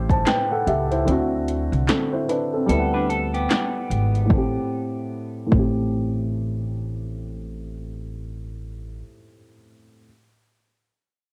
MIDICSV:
0, 0, Header, 1, 5, 480
1, 0, Start_track
1, 0, Tempo, 810811
1, 628, Time_signature, 4, 2, 24, 8
1, 6703, End_track
2, 0, Start_track
2, 0, Title_t, "Clean electric guitar"
2, 0, Program_c, 0, 27
2, 1594, Note_on_c, 0, 69, 72
2, 1728, Note_off_c, 0, 69, 0
2, 1740, Note_on_c, 0, 71, 74
2, 1743, Note_on_c, 0, 62, 64
2, 1827, Note_off_c, 0, 71, 0
2, 1829, Note_off_c, 0, 62, 0
2, 1833, Note_on_c, 0, 69, 78
2, 1968, Note_off_c, 0, 69, 0
2, 1977, Note_on_c, 0, 67, 68
2, 1981, Note_on_c, 0, 59, 54
2, 2527, Note_off_c, 0, 67, 0
2, 2529, Note_off_c, 0, 59, 0
2, 6703, End_track
3, 0, Start_track
3, 0, Title_t, "Upright piano"
3, 0, Program_c, 1, 0
3, 0, Control_c, 1, 64, 127
3, 0, Note_on_c, 1, 45, 71
3, 0, Note_on_c, 1, 57, 66
3, 0, Note_on_c, 1, 67, 64
3, 0, Note_on_c, 1, 72, 81
3, 62, Note_on_c, 1, 81, 62
3, 66, Note_off_c, 1, 72, 0
3, 66, Note_on_c, 1, 72, 53
3, 148, Note_off_c, 1, 81, 0
3, 150, Note_off_c, 1, 72, 0
3, 160, Note_on_c, 1, 79, 64
3, 163, Note_on_c, 1, 71, 56
3, 292, Note_off_c, 1, 79, 0
3, 293, Note_off_c, 1, 71, 0
3, 304, Note_on_c, 1, 78, 67
3, 308, Note_on_c, 1, 69, 54
3, 389, Note_off_c, 1, 78, 0
3, 391, Note_off_c, 1, 69, 0
3, 399, Note_on_c, 1, 76, 67
3, 403, Note_off_c, 1, 67, 0
3, 403, Note_on_c, 1, 67, 53
3, 531, Note_off_c, 1, 76, 0
3, 533, Note_off_c, 1, 67, 0
3, 540, Note_on_c, 1, 72, 58
3, 543, Note_on_c, 1, 64, 49
3, 603, Note_off_c, 1, 45, 0
3, 610, Note_off_c, 1, 57, 0
3, 622, Note_on_c, 1, 50, 66
3, 633, Note_on_c, 1, 60, 60
3, 636, Note_off_c, 1, 64, 0
3, 636, Control_c, 1, 64, 0
3, 645, Note_on_c, 1, 64, 62
3, 659, Note_on_c, 1, 66, 77
3, 723, Control_c, 1, 64, 127
3, 764, Note_off_c, 1, 72, 0
3, 1101, Note_off_c, 1, 60, 0
3, 1107, Note_off_c, 1, 64, 0
3, 1114, Note_off_c, 1, 66, 0
3, 1119, Note_on_c, 1, 69, 60
3, 1123, Note_on_c, 1, 60, 53
3, 1251, Note_off_c, 1, 69, 0
3, 1253, Note_off_c, 1, 60, 0
3, 1258, Note_on_c, 1, 72, 63
3, 1264, Note_on_c, 1, 64, 52
3, 1346, Note_off_c, 1, 72, 0
3, 1349, Note_off_c, 1, 64, 0
3, 1355, Note_on_c, 1, 71, 63
3, 1358, Note_on_c, 1, 62, 49
3, 1489, Note_off_c, 1, 71, 0
3, 1491, Note_off_c, 1, 62, 0
3, 1500, Note_on_c, 1, 69, 58
3, 1505, Note_on_c, 1, 60, 46
3, 1566, Note_off_c, 1, 50, 0
3, 1576, Note_on_c, 1, 55, 71
3, 1594, Note_on_c, 1, 59, 64
3, 1595, Control_c, 1, 64, 0
3, 1614, Note_on_c, 1, 64, 62
3, 1647, Note_off_c, 1, 64, 0
3, 1652, Note_on_c, 1, 78, 76
3, 1681, Control_c, 1, 64, 127
3, 1724, Note_off_c, 1, 69, 0
3, 1727, Note_off_c, 1, 60, 0
3, 2517, Note_on_c, 1, 45, 64
3, 2523, Note_off_c, 1, 55, 0
3, 2532, Note_off_c, 1, 59, 0
3, 2542, Note_on_c, 1, 57, 58
3, 2557, Control_c, 1, 64, 0
3, 2561, Note_off_c, 1, 78, 0
3, 2568, Note_on_c, 1, 60, 66
3, 2592, Note_on_c, 1, 67, 75
3, 2642, Control_c, 1, 64, 127
3, 2684, Note_off_c, 1, 45, 0
3, 2697, Note_off_c, 1, 57, 0
3, 2711, Note_off_c, 1, 60, 0
3, 2723, Note_off_c, 1, 67, 0
3, 3235, Note_on_c, 1, 45, 67
3, 3262, Note_on_c, 1, 57, 60
3, 3285, Note_on_c, 1, 60, 62
3, 3310, Note_on_c, 1, 67, 78
3, 5316, Note_off_c, 1, 45, 0
3, 5329, Note_off_c, 1, 57, 0
3, 5341, Note_off_c, 1, 60, 0
3, 5353, Note_off_c, 1, 67, 0
3, 5956, Control_c, 1, 64, 0
3, 6703, End_track
4, 0, Start_track
4, 0, Title_t, "Upright bass"
4, 0, Program_c, 2, 32
4, 0, Note_on_c, 2, 33, 98
4, 132, Note_off_c, 2, 33, 0
4, 395, Note_on_c, 2, 37, 76
4, 613, Note_off_c, 2, 37, 0
4, 636, Note_on_c, 2, 38, 93
4, 993, Note_off_c, 2, 38, 0
4, 1019, Note_on_c, 2, 36, 80
4, 1104, Note_off_c, 2, 36, 0
4, 1592, Note_on_c, 2, 38, 95
4, 2046, Note_off_c, 2, 38, 0
4, 2311, Note_on_c, 2, 32, 83
4, 2530, Note_off_c, 2, 32, 0
4, 2548, Note_on_c, 2, 33, 84
4, 2700, Note_off_c, 2, 33, 0
4, 3269, Note_on_c, 2, 33, 80
4, 5333, Note_off_c, 2, 33, 0
4, 6703, End_track
5, 0, Start_track
5, 0, Title_t, "Drums"
5, 56, Note_on_c, 9, 36, 78
5, 62, Note_on_c, 9, 42, 33
5, 115, Note_off_c, 9, 36, 0
5, 121, Note_off_c, 9, 42, 0
5, 157, Note_on_c, 9, 39, 81
5, 158, Note_on_c, 9, 42, 83
5, 159, Note_on_c, 9, 38, 94
5, 216, Note_off_c, 9, 39, 0
5, 217, Note_off_c, 9, 42, 0
5, 218, Note_off_c, 9, 38, 0
5, 399, Note_on_c, 9, 42, 66
5, 458, Note_off_c, 9, 42, 0
5, 542, Note_on_c, 9, 42, 32
5, 602, Note_off_c, 9, 42, 0
5, 638, Note_on_c, 9, 42, 67
5, 697, Note_off_c, 9, 42, 0
5, 878, Note_on_c, 9, 42, 58
5, 937, Note_off_c, 9, 42, 0
5, 1025, Note_on_c, 9, 42, 29
5, 1084, Note_off_c, 9, 42, 0
5, 1117, Note_on_c, 9, 39, 90
5, 1118, Note_on_c, 9, 42, 81
5, 1119, Note_on_c, 9, 38, 107
5, 1176, Note_off_c, 9, 39, 0
5, 1177, Note_off_c, 9, 42, 0
5, 1178, Note_off_c, 9, 38, 0
5, 1358, Note_on_c, 9, 42, 62
5, 1417, Note_off_c, 9, 42, 0
5, 1595, Note_on_c, 9, 42, 79
5, 1654, Note_off_c, 9, 42, 0
5, 1837, Note_on_c, 9, 42, 53
5, 1896, Note_off_c, 9, 42, 0
5, 1980, Note_on_c, 9, 42, 31
5, 2040, Note_off_c, 9, 42, 0
5, 2075, Note_on_c, 9, 39, 77
5, 2075, Note_on_c, 9, 42, 73
5, 2076, Note_on_c, 9, 38, 92
5, 2134, Note_off_c, 9, 39, 0
5, 2134, Note_off_c, 9, 42, 0
5, 2136, Note_off_c, 9, 38, 0
5, 2316, Note_on_c, 9, 42, 64
5, 2376, Note_off_c, 9, 42, 0
5, 2457, Note_on_c, 9, 42, 32
5, 2516, Note_off_c, 9, 42, 0
5, 2546, Note_on_c, 9, 36, 98
5, 2605, Note_off_c, 9, 36, 0
5, 3267, Note_on_c, 9, 36, 97
5, 3326, Note_off_c, 9, 36, 0
5, 6703, End_track
0, 0, End_of_file